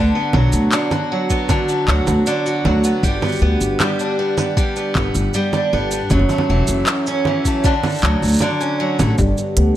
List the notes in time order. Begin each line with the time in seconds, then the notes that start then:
Already playing: D3 B3 D4
0.15 B3
0.33 B1 F#3, low conga
0.53 D2, shaker
0.72 D3, clap, shaker
0.91 F#4, low conga, shaker
1.12 F#3
1.30 B3, kick, shaker
1.49 D3, kick, low conga, shaker
1.69 B3, shaker
1.88 D2 F#3, clap
2.07 D2, low conga, shaker
2.26 D3, shaker
2.46 F#4, shaker
2.65 D2 F#3, low conga
2.84 B3, shaker
3.03 G1 G3, kick, shaker
3.22 B3, low conga, shaker
3.25 shaker
3.29 shaker
3.32 shaker
3.36 shaker
3.39 D2 B3, shaker
3.61 G1, shaker
3.80 G3, clap, low conga, shaker
3.99 D4, shaker
4.19 B3
4.38 B3, low conga, shaker
4.57 G3, kick, shaker
4.76 B3, shaker
4.95 G1 B3, kick, clap, low conga
5.15 G1, shaker
5.34 G3, shaker
5.53 D4, low conga, shaker
5.73 G1 B3
5.91 B3, shaker
6.10 F#1 F#2, kick, low conga, shaker
6.19 low conga
6.29 A3, low conga, shaker
6.38 low conga
6.49 E1 E3
6.67 F#1, shaker
6.86 F#2, clap, shaker
7.07 C#4, shaker
7.25 E3, low conga
7.45 A3, kick, shaker
7.64 D3, kick, shaker
7.84 A3, low conga, shaker
7.87 shaker
7.89 shaker
7.92 shaker
7.94 shaker
7.96 shaker
7.98 shaker
8.02 D2 F#3, clap, shaker
8.22 D2, shaker
8.25 shaker
8.28 shaker
8.29 shaker
8.32 shaker
8.34 shaker
8.36 shaker
8.38 low conga, shaker
8.41 D3, shaker
8.61 C#4, shaker
8.80 F#3
8.99 A1 A3, low conga, shaker
9.18 G1 G3, kick, shaker
9.38 B3, shaker
9.57 D2 B3, closed hi-hat